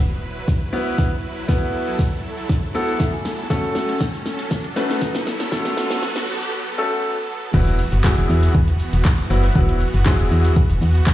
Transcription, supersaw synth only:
Already playing: F#3 E4 B4
1.49 A4
3.50 F#3 C#4
5.52 B3

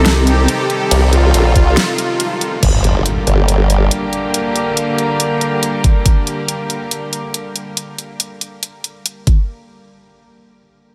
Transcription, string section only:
Already playing: C3 D#3 G3 D#4 A4
2.63 D3 G3 A#3 G4 A#4

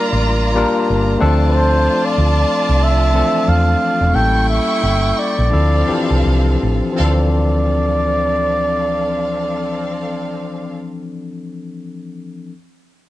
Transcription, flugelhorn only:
Already playing: A#4
1.48 B4
1.55 C5
2.05 D5
2.84 E5
3.49 F5
4.15 G5
4.49 E5
5.19 D5
6.99 D5

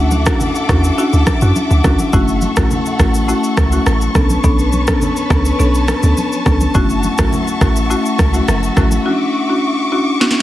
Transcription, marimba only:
Already playing: C#4 D4 E4 F#4
0.26 C#4 D4 E4 F#4
0.69 C#4 D4 E4 F#4
0.98 C#4 D4 E4 F#4
1.42 C#4 D4 E4 F#4
1.84 C#4 D4 E4 F#4
2.13 A3 C#4 E4 F#4
2.57 A3 C#4 E4 F#4
3.00 A3 C#4 E4 F#4
3.28 A3 C#4 E4 F#4
3.72 A3 C#4 E4 F#4
4.15 B3 C#4 D4 A4
4.44 B3 C#4 D4 A4
4.88 B3 C#4 D4 A4
5.30 B3 C#4 D4 A4
5.59 B3 C#4 D4 A4
6.03 B3 C#4 D4 A4
6.46 B3 C#4 D4 A4
6.74 A3 C#4 E4 F#4
7.18 A3 C#4 E4 F#4
7.61 A3 C#4 E4 F#4
7.90 A3 C#4 E4 F#4
8.34 A3 C#4 E4 F#4
8.76 A3 C#4 E4 F#4
9.05 C#4 D4 E4 F#4
9.49 C#4 D4 E4 F#4
9.92 C#4 D4 E4 F#4
10.21 C#4 D4 E4 F#4

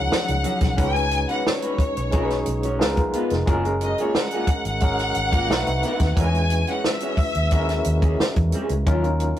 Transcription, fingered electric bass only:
0.13 muted fingered electric bass stroke
0.29 C#2
0.62 B1
0.79 C#2
1.79 muted fingered electric bass stroke
1.97 B1
2.47 B1
2.81 C#2
2.98 B1
3.31 F1
3.48 F#1
4.48 muted fingered electric bass stroke
4.66 G#1
5.16 G#1
5.49 B1
5.67 C2
6.00 D#2
6.17 E2
7.18 muted fingered electric bass stroke
7.36 D#2
7.86 D#2
8.20 muted fingered electric bass stroke
8.37 E2
8.70 C#2
8.87 D#2

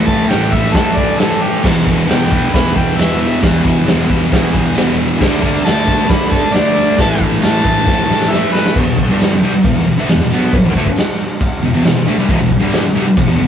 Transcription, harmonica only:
0.06 A5
0.28 G5
0.53 E5
0.74 A4
0.95 D5
1.18 A4
1.42 G4
2.09 G5
2.54 B5
2.77 G5
2.98 E5
5.65 A5
6.11 B5
6.32 A5
6.54 D5
7.00 A5
7.44 A5
8.30 E5
8.52 B4

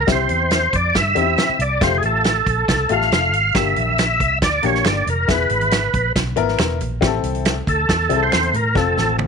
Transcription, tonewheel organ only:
0.00 A#4
0.12 C5
0.76 D5
0.98 E5
1.61 D5
1.83 C5
1.98 G#4
2.06 A4
2.92 F5
3.13 F5
3.56 E5
4.43 D5
4.66 C#5
4.88 D5
5.10 A#4
5.31 B4
7.69 A4
8.23 C5
8.56 A#4
8.77 A4

